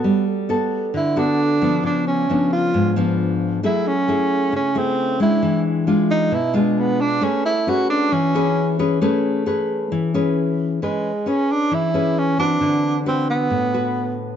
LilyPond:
<<
  \new Staff \with { instrumentName = "Nylon-string guitar" } { \time 4/4 \key a \major \tempo 4 = 134 << { <b fis' a'>8 r8 <b fis' a'>4. <b fis' a'>4 <f b>8~ | <f b>4 <eis b d'>4. <eis b d'>4. | <a e' gis'>8 r8 <a e' gis'>4. <a e' gis'>4 <gis d'>8~ | <gis d'>4 <gis d' f'>4 r8 <gis d' f'>4. |
<cis' gis' b'>8 r8 <cis' gis' b'>4 r8 <cis' gis' b'>4 <cis' gis' b'>8 | <cis' gis' b'>4 <cis' gis' b'>4. <cis' gis' b'>4. | <cis' gis' b'>8 r8 <cis' gis' b'>4. <cis' gis' b'>4 <c' fis' b'>8~ | <c' fis' b'>4 <fis' b'>4. <fis' b'>4. | } \\ { g2 d2 | cis2 gis,2 | fis2 cis2 | e2 b,2 |
a2 e2 | a2 e2 | r2 e2 | d2 a,2 | } >> }
  \new Staff \with { instrumentName = "Tenor saxophone" } { \time 4/4 \key a \major r2 e'8 d'4. | d'8 cis'4 eis'4 r4. | e'8 cis'4. cis'8 c'4 e'8~ | e'8 r4 dis'8 e'8 gis8 b8 d'8 |
cis'8 e'8 fis'8 d'8 cis'4. r8 | r1 | gis4 cis'8 d'8 e'4 cis'8 d'8~ | d'4 c'8 b2 r8 | }
>>